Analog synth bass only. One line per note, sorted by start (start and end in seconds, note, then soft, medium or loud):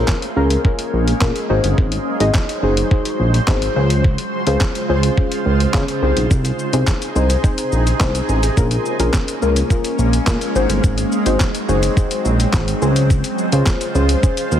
0.37 0.57 C#2 medium
0.93 1.13 A#1 medium
1.21 1.32 A#2 loud
1.50 1.60 G#1 loud
1.64 1.74 G1 medium
1.78 1.98 G#1 loud
2.20 2.31 G#1 medium
2.63 2.83 F#1 loud
3.20 3.40 A#1 medium
3.48 3.68 G#1 loud
3.76 4.17 C#2 medium
4.47 4.57 C#2 medium
4.89 5.10 C#2 medium
5.46 5.66 C#2 medium
5.74 5.84 C#3 loud
6.02 6.13 C2 loud
6.17 6.27 B1 medium
6.31 6.51 C2 loud
6.73 6.84 C2 loud
7.16 7.36 C2 medium
7.72 7.93 A#1 medium
8.01 8.21 C2 loud
8.29 8.49 A1 medium
8.57 8.78 A#1 loud
9.00 9.10 A#1 loud
9.42 9.63 C#2 medium
9.99 10.19 A#1 loud
10.27 10.37 A#2 medium
10.55 10.66 G#1 loud
10.69 10.80 G1 medium
10.84 11.04 G#1 loud
11.26 11.36 G#1 loud
11.69 11.89 F#1 medium
12.25 12.46 A#1 medium
12.54 12.74 G#1 loud
12.82 13.22 C#2 loud
13.53 13.63 C#2 loud
13.95 14.15 C#2 loud
14.52 14.60 D#2 medium